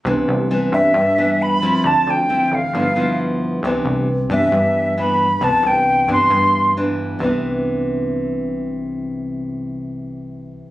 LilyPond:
<<
  \new Staff \with { instrumentName = "Flute" } { \time 4/4 \key c \major \tempo 4 = 134 r4. e''4. b''4 | a''8 g''4 f''4. r4 | r4. e''4. b''4 | a''8 g''4 c'''4. r4 |
r1 | r1 | }
  \new Staff \with { instrumentName = "Nylon-string guitar" } { \time 4/4 \key c \major << { <e b d'>4 <e b d'>4 r8 <e b d'>4 <f c' e'>8~ | <f c' e'>4 <f c' e'>8 r8 <f b e'>8 <f b e'>4. | <e b d'>4 r8 <e b d'>4. <e b d'>8 r8 | <e b d'>4. <e b d'>4. <e b d'>4 |
<c e b d'>1~ | <c e b d'>1 | } \\ { c2 g,2 | d2 g,2 | c2 g,2 | c2 g,2 |
r1 | r1 | } >> }
  \new Staff \with { instrumentName = "Analog synth bass" } { \clef bass \time 4/4 \key c \major c,16 r16 c,4 g,8 g,2 | d,16 r16 d,4 a,,8 g,,2 | c,16 r16 c,4 g,8 g,2 | c,16 r16 c,4 g,8 g,2 |
c,1~ | c,1 | }
>>